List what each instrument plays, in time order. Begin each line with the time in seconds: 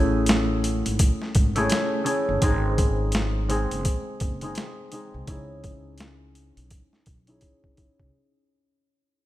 Already playing: upright bass A1, harp A3 C#4 E4 G#4
0.26 snare, closed hi-hat
0.64 closed hi-hat
0.86 upright bass G#1, closed hi-hat
0.99 kick, closed hi-hat
1.22 snare
1.35 upright bass G#1, kick, closed hi-hat
1.55 harp A3 C#4 E4 G#4, closed hi-hat
1.70 snare, closed hi-hat
2.04 harp A3 C#4 E4 G#4, closed hi-hat
2.29 upright bass G1
2.42 upright bass G#1, harp G#3 C4 D#4 G#4, kick, closed hi-hat
2.78 kick, closed hi-hat
3.12 snare, closed hi-hat
3.48 harp G#3 C4 D#4 G#4, closed hi-hat
3.71 upright bass F#1, closed hi-hat
3.85 kick, closed hi-hat
4.20 upright bass F#1, kick, closed hi-hat
4.41 harp G#3 C4 D#4 G#4, closed hi-hat
4.55 snare, closed hi-hat
4.91 harp G#3 C4 D#4 G#4, closed hi-hat
5.14 upright bass C2
5.27 upright bass C#2, harp C#4 D#4 E4 G#4, kick, closed hi-hat
5.64 kick, closed hi-hat
5.98 snare, closed hi-hat
6.35 closed hi-hat
6.57 upright bass B1, closed hi-hat
6.71 kick, closed hi-hat
6.93 snare
7.06 upright bass B1, kick, closed hi-hat
7.27 harp C#4 D#4 E4 G#4, closed hi-hat
7.41 kick, closed hi-hat
7.64 kick
7.76 harp C#4 D#4 E4 G#4, kick, closed hi-hat
8.00 upright bass C2, kick